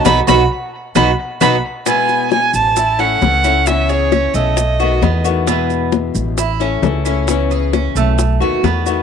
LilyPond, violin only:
\new Staff \with { instrumentName = "Violin" } { \time 4/4 \key e \major \tempo 4 = 133 b''8 b''8 r4 b''8 r8 b''8 r8 | gis''4 gis''8 a''4 fis''4. | e''8 cis''4 dis''2 r8 | r1 |
r1 | }